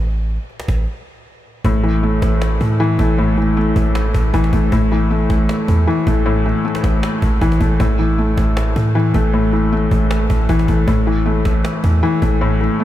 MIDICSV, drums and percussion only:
0, 0, Header, 1, 2, 480
1, 0, Start_track
1, 0, Tempo, 384615
1, 132, Time_signature, 4, 2, 24, 8
1, 16024, End_track
2, 0, Start_track
2, 0, Title_t, "Cajon"
2, 53, Note_on_c, 9, 38, 30
2, 134, Note_off_c, 9, 38, 0
2, 134, Note_on_c, 9, 38, 46
2, 259, Note_off_c, 9, 38, 0
2, 375, Note_on_c, 9, 38, 32
2, 455, Note_off_c, 9, 38, 0
2, 455, Note_on_c, 9, 38, 33
2, 536, Note_off_c, 9, 38, 0
2, 536, Note_on_c, 9, 38, 33
2, 619, Note_off_c, 9, 38, 0
2, 619, Note_on_c, 9, 38, 47
2, 743, Note_off_c, 9, 38, 0
2, 743, Note_on_c, 9, 38, 98
2, 853, Note_on_c, 9, 36, 94
2, 855, Note_off_c, 9, 38, 0
2, 855, Note_on_c, 9, 38, 87
2, 978, Note_off_c, 9, 36, 0
2, 980, Note_off_c, 9, 38, 0
2, 2053, Note_on_c, 9, 36, 114
2, 2178, Note_off_c, 9, 36, 0
2, 2291, Note_on_c, 9, 38, 39
2, 2416, Note_off_c, 9, 38, 0
2, 2538, Note_on_c, 9, 38, 47
2, 2662, Note_off_c, 9, 38, 0
2, 2773, Note_on_c, 9, 36, 98
2, 2774, Note_on_c, 9, 38, 94
2, 2897, Note_off_c, 9, 36, 0
2, 2899, Note_off_c, 9, 38, 0
2, 3015, Note_on_c, 9, 38, 118
2, 3140, Note_off_c, 9, 38, 0
2, 3142, Note_on_c, 9, 38, 36
2, 3254, Note_on_c, 9, 36, 102
2, 3267, Note_off_c, 9, 38, 0
2, 3378, Note_off_c, 9, 36, 0
2, 3493, Note_on_c, 9, 38, 37
2, 3617, Note_off_c, 9, 38, 0
2, 3732, Note_on_c, 9, 36, 93
2, 3814, Note_on_c, 9, 38, 32
2, 3857, Note_off_c, 9, 36, 0
2, 3894, Note_off_c, 9, 38, 0
2, 3894, Note_on_c, 9, 38, 31
2, 3974, Note_off_c, 9, 38, 0
2, 3974, Note_on_c, 9, 38, 45
2, 4098, Note_off_c, 9, 38, 0
2, 4209, Note_on_c, 9, 38, 38
2, 4334, Note_off_c, 9, 38, 0
2, 4455, Note_on_c, 9, 38, 48
2, 4580, Note_off_c, 9, 38, 0
2, 4692, Note_on_c, 9, 36, 95
2, 4817, Note_off_c, 9, 36, 0
2, 4932, Note_on_c, 9, 38, 122
2, 5057, Note_off_c, 9, 38, 0
2, 5173, Note_on_c, 9, 36, 106
2, 5298, Note_off_c, 9, 36, 0
2, 5413, Note_on_c, 9, 36, 108
2, 5493, Note_on_c, 9, 38, 29
2, 5538, Note_off_c, 9, 36, 0
2, 5540, Note_off_c, 9, 38, 0
2, 5540, Note_on_c, 9, 38, 70
2, 5571, Note_off_c, 9, 38, 0
2, 5571, Note_on_c, 9, 38, 37
2, 5651, Note_on_c, 9, 36, 92
2, 5696, Note_off_c, 9, 38, 0
2, 5716, Note_on_c, 9, 38, 32
2, 5776, Note_off_c, 9, 36, 0
2, 5779, Note_off_c, 9, 38, 0
2, 5779, Note_on_c, 9, 38, 27
2, 5836, Note_off_c, 9, 38, 0
2, 5836, Note_on_c, 9, 38, 22
2, 5893, Note_on_c, 9, 36, 115
2, 5960, Note_off_c, 9, 38, 0
2, 6017, Note_off_c, 9, 36, 0
2, 6128, Note_on_c, 9, 38, 39
2, 6253, Note_off_c, 9, 38, 0
2, 6376, Note_on_c, 9, 38, 48
2, 6500, Note_off_c, 9, 38, 0
2, 6613, Note_on_c, 9, 36, 93
2, 6613, Note_on_c, 9, 38, 91
2, 6737, Note_off_c, 9, 36, 0
2, 6738, Note_off_c, 9, 38, 0
2, 6854, Note_on_c, 9, 38, 118
2, 6979, Note_off_c, 9, 38, 0
2, 6981, Note_on_c, 9, 38, 35
2, 7094, Note_on_c, 9, 36, 107
2, 7106, Note_off_c, 9, 38, 0
2, 7218, Note_off_c, 9, 36, 0
2, 7332, Note_on_c, 9, 38, 37
2, 7457, Note_off_c, 9, 38, 0
2, 7573, Note_on_c, 9, 36, 93
2, 7655, Note_on_c, 9, 38, 33
2, 7697, Note_off_c, 9, 36, 0
2, 7736, Note_off_c, 9, 38, 0
2, 7736, Note_on_c, 9, 38, 31
2, 7814, Note_off_c, 9, 38, 0
2, 7814, Note_on_c, 9, 38, 45
2, 7939, Note_off_c, 9, 38, 0
2, 8055, Note_on_c, 9, 38, 34
2, 8135, Note_off_c, 9, 38, 0
2, 8135, Note_on_c, 9, 38, 34
2, 8216, Note_off_c, 9, 38, 0
2, 8216, Note_on_c, 9, 38, 34
2, 8298, Note_off_c, 9, 38, 0
2, 8298, Note_on_c, 9, 38, 48
2, 8422, Note_off_c, 9, 38, 0
2, 8422, Note_on_c, 9, 38, 99
2, 8534, Note_on_c, 9, 36, 96
2, 8535, Note_off_c, 9, 38, 0
2, 8535, Note_on_c, 9, 38, 91
2, 8659, Note_off_c, 9, 36, 0
2, 8659, Note_off_c, 9, 38, 0
2, 8775, Note_on_c, 9, 38, 121
2, 8839, Note_off_c, 9, 38, 0
2, 8839, Note_on_c, 9, 38, 36
2, 8902, Note_off_c, 9, 38, 0
2, 8902, Note_on_c, 9, 38, 35
2, 8958, Note_off_c, 9, 38, 0
2, 8958, Note_on_c, 9, 38, 35
2, 9014, Note_on_c, 9, 36, 107
2, 9077, Note_off_c, 9, 38, 0
2, 9077, Note_on_c, 9, 38, 35
2, 9138, Note_off_c, 9, 36, 0
2, 9141, Note_off_c, 9, 38, 0
2, 9141, Note_on_c, 9, 38, 31
2, 9197, Note_off_c, 9, 38, 0
2, 9197, Note_on_c, 9, 38, 25
2, 9253, Note_on_c, 9, 36, 107
2, 9317, Note_off_c, 9, 38, 0
2, 9317, Note_on_c, 9, 38, 28
2, 9378, Note_off_c, 9, 36, 0
2, 9382, Note_off_c, 9, 38, 0
2, 9382, Note_on_c, 9, 38, 70
2, 9437, Note_off_c, 9, 38, 0
2, 9437, Note_on_c, 9, 38, 36
2, 9492, Note_on_c, 9, 36, 94
2, 9562, Note_off_c, 9, 38, 0
2, 9575, Note_on_c, 9, 38, 31
2, 9617, Note_off_c, 9, 36, 0
2, 9654, Note_off_c, 9, 38, 0
2, 9654, Note_on_c, 9, 38, 30
2, 9733, Note_on_c, 9, 36, 114
2, 9779, Note_off_c, 9, 38, 0
2, 9813, Note_on_c, 9, 38, 31
2, 9858, Note_off_c, 9, 36, 0
2, 9893, Note_off_c, 9, 38, 0
2, 9893, Note_on_c, 9, 38, 33
2, 9970, Note_off_c, 9, 38, 0
2, 9970, Note_on_c, 9, 38, 39
2, 10095, Note_off_c, 9, 38, 0
2, 10217, Note_on_c, 9, 38, 46
2, 10342, Note_off_c, 9, 38, 0
2, 10452, Note_on_c, 9, 36, 95
2, 10453, Note_on_c, 9, 38, 90
2, 10577, Note_off_c, 9, 36, 0
2, 10578, Note_off_c, 9, 38, 0
2, 10693, Note_on_c, 9, 38, 118
2, 10818, Note_off_c, 9, 38, 0
2, 10820, Note_on_c, 9, 38, 36
2, 10933, Note_on_c, 9, 36, 104
2, 10945, Note_off_c, 9, 38, 0
2, 11058, Note_off_c, 9, 36, 0
2, 11171, Note_on_c, 9, 38, 37
2, 11296, Note_off_c, 9, 38, 0
2, 11412, Note_on_c, 9, 36, 93
2, 11493, Note_on_c, 9, 38, 33
2, 11537, Note_off_c, 9, 36, 0
2, 11573, Note_off_c, 9, 38, 0
2, 11573, Note_on_c, 9, 38, 30
2, 11653, Note_off_c, 9, 38, 0
2, 11653, Note_on_c, 9, 38, 47
2, 11778, Note_off_c, 9, 38, 0
2, 11889, Note_on_c, 9, 38, 39
2, 12013, Note_off_c, 9, 38, 0
2, 12136, Note_on_c, 9, 38, 47
2, 12261, Note_off_c, 9, 38, 0
2, 12372, Note_on_c, 9, 36, 96
2, 12497, Note_off_c, 9, 36, 0
2, 12613, Note_on_c, 9, 38, 120
2, 12738, Note_off_c, 9, 38, 0
2, 12853, Note_on_c, 9, 36, 106
2, 12978, Note_off_c, 9, 36, 0
2, 13093, Note_on_c, 9, 36, 105
2, 13172, Note_on_c, 9, 38, 31
2, 13218, Note_off_c, 9, 36, 0
2, 13220, Note_off_c, 9, 38, 0
2, 13220, Note_on_c, 9, 38, 69
2, 13252, Note_off_c, 9, 38, 0
2, 13252, Note_on_c, 9, 38, 37
2, 13332, Note_on_c, 9, 36, 92
2, 13377, Note_off_c, 9, 38, 0
2, 13397, Note_on_c, 9, 38, 32
2, 13457, Note_off_c, 9, 36, 0
2, 13461, Note_off_c, 9, 38, 0
2, 13461, Note_on_c, 9, 38, 26
2, 13518, Note_off_c, 9, 38, 0
2, 13518, Note_on_c, 9, 38, 22
2, 13574, Note_on_c, 9, 36, 109
2, 13643, Note_off_c, 9, 38, 0
2, 13698, Note_off_c, 9, 36, 0
2, 13810, Note_on_c, 9, 38, 39
2, 13935, Note_off_c, 9, 38, 0
2, 14057, Note_on_c, 9, 38, 49
2, 14182, Note_off_c, 9, 38, 0
2, 14293, Note_on_c, 9, 36, 93
2, 14293, Note_on_c, 9, 38, 90
2, 14417, Note_off_c, 9, 36, 0
2, 14418, Note_off_c, 9, 38, 0
2, 14534, Note_on_c, 9, 38, 124
2, 14659, Note_off_c, 9, 38, 0
2, 14661, Note_on_c, 9, 38, 35
2, 14773, Note_on_c, 9, 36, 106
2, 14786, Note_off_c, 9, 38, 0
2, 14898, Note_off_c, 9, 36, 0
2, 15012, Note_on_c, 9, 38, 36
2, 15137, Note_off_c, 9, 38, 0
2, 15252, Note_on_c, 9, 36, 96
2, 15334, Note_on_c, 9, 38, 31
2, 15377, Note_off_c, 9, 36, 0
2, 15414, Note_off_c, 9, 38, 0
2, 15414, Note_on_c, 9, 38, 31
2, 15495, Note_off_c, 9, 38, 0
2, 15495, Note_on_c, 9, 38, 48
2, 15619, Note_off_c, 9, 38, 0
2, 15734, Note_on_c, 9, 38, 33
2, 15816, Note_off_c, 9, 38, 0
2, 15816, Note_on_c, 9, 38, 33
2, 15895, Note_off_c, 9, 38, 0
2, 15895, Note_on_c, 9, 38, 34
2, 15979, Note_off_c, 9, 38, 0
2, 15979, Note_on_c, 9, 38, 48
2, 16024, Note_off_c, 9, 38, 0
2, 16024, End_track
0, 0, End_of_file